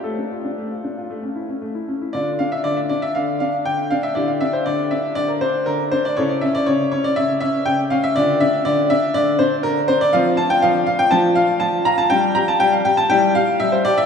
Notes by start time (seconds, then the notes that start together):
0.04 A3 A4
0.18 D4
0.31 F4
0.45 D4
0.58 A3
0.71 F4
0.84 D4
0.97 F4
1.10 A3
1.23 C#4
1.36 E4
1.49 C#4
1.62 A3
1.75 E4
1.88 C#4
2.01 E4
2.13 D3 D4 F4 D5
2.39 D4 F5
2.52 E5
2.64 D3 D5
2.77 E5
2.89 D4 D5
3.02 E5
3.15 D3 F5
3.40 D4 F5
3.65 D3 G5
3.90 D4 F5
4.03 E5
4.15 D3 E4 G4 D5
4.28 F5
4.41 D4 E5
4.53 C5
4.66 D3 D5
4.91 D4 E5
5.15 D3 D5
5.28 A#4
5.41 D4 C5
5.66 D3 A#4
5.92 D4 C5
6.05 D5
6.17 C#3 E4 A4 C#5
6.29 D5
6.41 C#4 E5
6.55 D5
6.66 C#3 C#5
6.92 C#4 C#5
7.04 D5
7.16 C#3 E5
7.41 C#4 E5
7.66 C#3 G5
7.90 C#4 F5
8.04 E5
8.16 D3 D4 F4 D5
8.41 D4 E5
8.65 D3 D5
8.90 D4 E5
9.14 D3 D5
9.39 D4 C5
9.63 D3 A#4
9.88 D4 C5
10.01 D5
10.13 F3 C4 F4 F5
10.37 F4 A5
10.50 G5
10.62 F3 F5
10.87 F4 F5
10.99 G5
11.11 F3 D4 F4 A5
11.35 F4 F5
11.60 F3 A5
11.85 F4 A#5
11.98 A5
12.10 G3 D4 F4 G5
12.35 G4 A#5
12.48 A5
12.60 G3 G5
12.72 F5
12.85 G4 G5
12.97 A5
13.10 G3 E4 G5
13.35 G4 F5
13.60 G3 E5
13.72 C5
13.85 G4 D5
13.98 E5